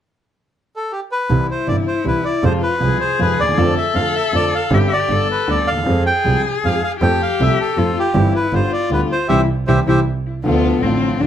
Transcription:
0.76 bandoneon A4
0.92 bandoneon G4
1.12 bandoneon B4
1.29 grand piano C2 C3 E3 G3 E4, double bass C2, cello E4
1.51 bandoneon C5
1.67 grand piano G1 G2 C3 E3 G3 E4, double bass G1, bandoneon D5
1.87 bandoneon C5
2.04 grand piano C2 C3 E3 G3 E4, double bass C2, bandoneon B4
2.25 bandoneon D5
2.43 grand piano F2 C3 F3 G#3 F4, double bass F2, cello F4, bandoneon C5
2.63 bandoneon B4
2.80 grand piano C2 C3 F3 G#3 F4, double bass C2, cello G#4
3.00 bandoneon C5
3.19 grand piano F2 C3 F3 G#3 F4, double bass F2, bandoneon B4
3.40 grand piano D2, double bass D#2, bandoneon D5
3.46 grand piano D#2
3.53 grand piano E2
3.57 double bass F2, grand piano F2 D3 F3 A3 F4, cello A4
3.78 bandoneon E5
3.94 double bass F2, grand piano F2 D3 F3 A3 F4, bandoneon F5
4.15 bandoneon E5
4.33 double bass F2, grand piano F2 D3 F3 A3 F4, bandoneon D5
4.55 bandoneon F5
4.70 grand piano G1 G2 D3 G3 C4 G4, double bass G1, cello G4, bandoneon E5
4.87 bandoneon E5
4.93 bandoneon D5
5.08 grand piano G1 G2 D3 G3 B3 G4, double bass G1, cello A4
5.31 bandoneon B4
5.48 grand piano D2 D3 G3 B3 G4, double bass D2, bandoneon D5
5.67 double bass D#2, bandoneon F5
5.72 grand piano D2
5.77 grand piano D#2
5.82 grand piano E2 F3 G#3
5.86 grand piano F2 C4 G#4, double bass F2, cello G#4
6.06 bandoneon G5
6.24 grand piano C2 C3 F3 G#3 C4 G#4, double bass C2
6.64 double bass F2, grand piano F2 F3 G#3 C4 G#4, bandoneon F5
6.84 bandoneon F5
7.01 double bass F2, grand piano F2 F3 A3 C4 A4, cello G4, bandoneon G5
7.22 bandoneon F5
7.40 double bass C2, grand piano C2 C3 F3 A3 C4 A4, bandoneon E5
7.60 bandoneon A4
7.77 double bass F2, grand piano F2 F3 A3 C4 A4, cello F4
7.99 bandoneon G4
8.14 grand piano G1 G2 E3 G3 C4 G4, double bass G1, cello E4
8.35 bandoneon B4
8.53 double bass G1, grand piano G1 G2 D3 G3 B3 G4, cello F4, bandoneon C5
8.73 bandoneon D5
8.90 double bass D2, grand piano D2 D3 G3 B3 G4, bandoneon B4
9.12 bandoneon C5
9.28 double bass C2, grand piano C3 E3 G3, cello E4, bandoneon G4 C5 E5
9.67 double bass C2, grand piano C3 E3 G3, cello E4, bandoneon G4 C5 E5
9.86 double bass C2, grand piano C3 E3 G3, cello E4, bandoneon G4 C5 E5
10.44 double bass D2, grand piano D2 D3 F3 A3, string section A3 D4 F4, cello B3
10.48 grand piano F4
10.81 double bass A1, grand piano A1 A2 D3 F3 A3, string section A3 D4 F4, cello C4
10.86 grand piano F4
11.20 double bass D2, grand piano D2 D3 F3 A3 F4, string section A3 D4 F4, cello D4

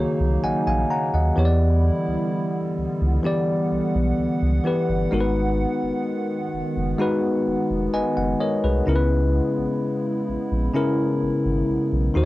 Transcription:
Already playing: analog synth pad C#3 F#3 A#3 D#4, tine electric piano D#3 A#3 F#4 G#4 C#5
0.20 analog synth bass C2
0.44 analog synth bass A#1, tine electric piano D#5 F#5 G#5
0.67 analog synth bass A#1, tine electric piano F5 G#5
0.90 tine electric piano F#5 A#5
1.14 analog synth bass D#2, tine electric piano D#5 F#5
1.36 analog synth bass E2, analog synth pad D3 G3 B3 E4, tine electric piano E3 B3 G4 C#5
1.45 tine electric piano D5
2.08 analog synth bass C#2
2.78 analog synth bass C#2
3.01 analog synth bass C#2
3.23 tine electric piano E3 B3 G4 D5, analog synth pad F#5
3.72 analog synth bass B1
3.95 analog synth bass B1
4.19 analog synth bass C#2
4.42 analog synth bass C#2
4.64 tine electric piano E3 B3 G4 B4
4.89 analog synth bass G1
5.11 analog synth bass G#1, analog synth pad D#3 G#3, tine electric piano G#3 D#4 F#4 A#4
5.21 tine electric piano B4
5.83 analog synth bass F#1
6.53 analog synth bass F#1
6.77 analog synth bass F#1
6.98 tine electric piano G#3 D#4 F#4 B4
7.47 analog synth bass F1
7.71 analog synth bass F1
7.94 analog synth bass F#1, tine electric piano B4 D#5 G#5
8.17 analog synth bass F#1, tine electric piano F#5
8.40 tine electric piano A#4 C#5 D#5
8.64 analog synth bass C2, tine electric piano G#4 B4
8.86 analog synth bass C#2, tine electric piano C#3 C#4 E4 A#4, analog synth pad C#3 E4
8.96 tine electric piano B4
9.58 analog synth bass A#1
10.28 analog synth bass A#1
10.52 analog synth bass A#1
10.73 tine electric piano C#3 C#4 E4 A#4
11.22 analog synth bass G#1
11.45 analog synth bass G#1
11.69 analog synth bass B1
11.92 analog synth bass B1
12.14 analog synth bass D#2, analog synth pad C#3 F#3 A#3 D#4, tine electric piano D#3 D#4 F#4 C5

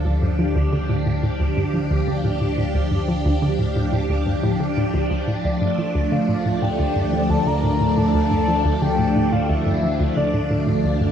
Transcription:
Already playing: synth drone D2, string machine F3 D4, synth texture D5
0.05 synth arpeggio sound D2, string machine G4
0.22 synth arpeggio sound G2
0.39 synth arpeggio sound F3
0.56 synth arpeggio sound D2
0.72 synth arpeggio sound D3
0.89 synth arpeggio sound A2
1.06 synth arpeggio sound A2
1.23 synth arpeggio sound A2
1.40 synth arpeggio sound D2
1.57 synth arpeggio sound G2
1.74 synth arpeggio sound F3
1.91 synth arpeggio sound D2
2.07 synth arpeggio sound D3
2.24 synth arpeggio sound A2
2.41 synth arpeggio sound A2
2.58 synth arpeggio sound A2
2.75 synth arpeggio sound D2
2.91 synth arpeggio sound G2
3.08 synth arpeggio sound F3
3.25 synth arpeggio sound D2
3.42 synth arpeggio sound D3
3.59 synth arpeggio sound A2
3.76 synth arpeggio sound A2
3.93 synth arpeggio sound A2
4.10 synth arpeggio sound D2
4.27 synth arpeggio sound G2
4.43 synth arpeggio sound A2
4.60 synth arpeggio sound D3
4.77 synth arpeggio sound A2
4.94 synth arpeggio sound D2
5.11 synth arpeggio sound D2
5.28 synth arpeggio sound A2
5.44 synth drone D2, synth arpeggio sound D2, string machine A3, soft synth lead D5
5.61 synth arpeggio sound G2
5.78 synth arpeggio sound F3
5.95 synth arpeggio sound D2
6.12 synth arpeggio sound D3, soft synth lead F5
6.29 synth arpeggio sound A2
6.46 synth arpeggio sound A2
6.62 synth arpeggio sound A2, soft synth lead G5
6.79 synth arpeggio sound D2
6.96 synth arpeggio sound G2
7.13 synth arpeggio sound F3
7.30 synth arpeggio sound D2, soft synth lead A5
7.46 synth arpeggio sound D3, soft synth lead A#5
7.64 synth arpeggio sound A2
7.80 synth arpeggio sound A2
7.97 synth arpeggio sound A2, soft synth lead A5
8.14 synth arpeggio sound D2
8.31 synth arpeggio sound G2
8.48 synth arpeggio sound F3
8.65 synth arpeggio sound D2
8.82 synth arpeggio sound D3, soft synth lead G5
8.99 synth arpeggio sound A2
9.16 synth arpeggio sound A2
9.32 synth arpeggio sound A2, soft synth lead F5
9.49 synth arpeggio sound D2, soft synth lead E5
9.66 synth arpeggio sound G2
9.83 synth arpeggio sound F3
10.00 synth arpeggio sound D2
10.17 synth arpeggio sound D3, soft synth lead D5
10.34 synth arpeggio sound A2
10.51 synth arpeggio sound A2
10.67 synth arpeggio sound A2
10.83 synth arpeggio sound D2, string machine E3
11.01 synth arpeggio sound G2

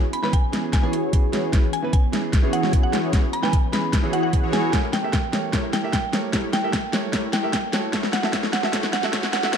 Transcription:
Already playing: ambient pad E3 B3 C#4 G#4 C#5
0.13 synth pluck B5, closed hi-hat
0.22 grand piano E3 B3 C#4 B4, synth pluck B5, snare
0.33 synth pluck G#5, kick, closed hi-hat
0.52 grand piano E3 B3 C#4 G#4, snare, closed hi-hat
0.73 synth pluck G#5, kick, snare, closed hi-hat
0.82 grand piano E3 B3 C#4 G#4, analog polysynth E3 E4 F#4 G#4 C#5, synth pluck G#5
0.93 closed hi-hat
1.12 grand piano E3 B3 C#4 G#4, kick, closed hi-hat
1.32 grand piano E3 B3 C#4 G#4, snare, closed hi-hat
1.52 grand piano E3 B3 C#4 G#4, analog polysynth E3 E4 F#4 G#4 C#5, ambient pad B4, kick, snare, closed hi-hat
1.73 synth pluck G#5, closed hi-hat
1.82 grand piano E3 B3 C#4 B4
1.93 synth pluck G#5, kick, closed hi-hat
2.12 grand piano E3 B3 C#4 G#4, snare, closed hi-hat
2.33 kick, snare, closed hi-hat
2.42 grand piano E3 B3 C#4 G#4, analog polysynth E3 E4 F#4 G#4 C#5
2.53 synth pluck F#5, closed hi-hat
2.63 snare
2.72 grand piano E3 B3 C#4 G#4, kick, closed hi-hat
2.83 synth pluck F#5
2.92 grand piano E3 B3 C#4 G#4, snare, closed hi-hat
3.12 grand piano E3 B3 C#4 G#4, analog polysynth E3 E4 F#4 G#4 C#5, kick, snare, closed hi-hat
3.33 synth pluck B5, closed hi-hat
3.42 grand piano E3 B3 C#4 B4, synth pluck G#5, snare
3.53 kick, closed hi-hat
3.72 grand piano E3 B3 C#4 G#4, synth pluck B5, snare, closed hi-hat
3.93 kick, snare, closed hi-hat
4.02 grand piano E3 B3 C#4 G#4, analog polysynth E3 E4 F#4 G#4 C#5
4.13 synth pluck F#5, closed hi-hat
4.23 synth pluck F#5
4.32 grand piano E3 B3 C#4 G#4, analog polysynth E3 E4 F#4 G#4 B4, kick, closed hi-hat
4.43 analog polysynth E3 E4 F#4 G#4 C#5
4.52 grand piano E3 B3 C#4 G#4, synth pluck G#5, snare, closed hi-hat
4.72 ambient pad G3 A#3 E4 A4 C#5, grand piano A3 G4 A#4 C#5, analog polysynth A3 E4 G4 A#4 C#5, kick, snare, closed hi-hat, riser
4.93 synth pluck G5, snare, closed hi-hat
5.02 grand piano A3 G4 A#4 E5
5.13 synth pluck G5, kick, snare, closed hi-hat
5.32 grand piano A3 G4 A#4 C#5, snare, closed hi-hat
5.52 grand piano A3 G4 A#4 C#5, analog polysynth A3 E4 G4 A#4 C#5, kick, snare, closed hi-hat
5.73 synth pluck G5, snare, closed hi-hat
5.83 grand piano A3 G4 A#4 E5
5.93 synth pluck G5, kick, snare, closed hi-hat
6.12 grand piano A3 G4 A#4 C#5, snare, closed hi-hat
6.32 grand piano A3 G4 A#4 C#5, analog polysynth A3 E4 G4 A#4 C#5, kick, snare, closed hi-hat
6.53 synth pluck G5, snare, closed hi-hat
6.62 grand piano A3 G4 A#4 E5
6.73 synth pluck G5, kick, snare, closed hi-hat
6.92 grand piano A3 G4 A#4 C#5, snare, closed hi-hat
7.12 grand piano A3 G4 A#4 C#5, analog polysynth A3 E4 G4 A#4 C#5, kick, snare, closed hi-hat
7.33 synth pluck G5, snare, closed hi-hat
7.42 grand piano A3 G4 A#4 E5
7.53 synth pluck G5, kick, snare, closed hi-hat
7.72 ambient pad F#3 D4, grand piano A3 F#4 A4 C#5, snare, closed hi-hat
7.92 grand piano A3 F#4 A4 C#5, analog polysynth A3 E4 F#4 A4 C#5, kick, snare, closed hi-hat
8.03 snare
8.13 synth pluck F#5, snare, closed hi-hat
8.22 grand piano A3 F#4 A4 E5, snare
8.32 grand piano A3 A4 C#5, analog polysynth A3 E4 F#4 A4 C#5, kick, snare, closed hi-hat
8.43 snare
8.53 synth pluck F#5, snare, closed hi-hat
8.62 grand piano A3 F#4 A4 E5, snare
8.72 grand piano A3 F#4 A4 C#5, analog polysynth A3 E4 F#4 A4 C#5, kick, snare, closed hi-hat
8.83 snare
8.93 synth pluck F#5, snare, closed hi-hat
9.02 grand piano A3 F#4 A4 E5, snare
9.12 grand piano A3 F#4 A4 C#5, analog polysynth A3 E4 F#4 A4 C#5, kick, snare, closed hi-hat
9.23 snare
9.33 synth pluck F#5, snare, closed hi-hat
9.42 grand piano A3 F#4 A4 E5, snare
9.52 grand piano A3 F#4 A4 C#5, analog polysynth A3 E4 F#4 A4 C#5, synth pluck F#5, kick, snare, closed hi-hat

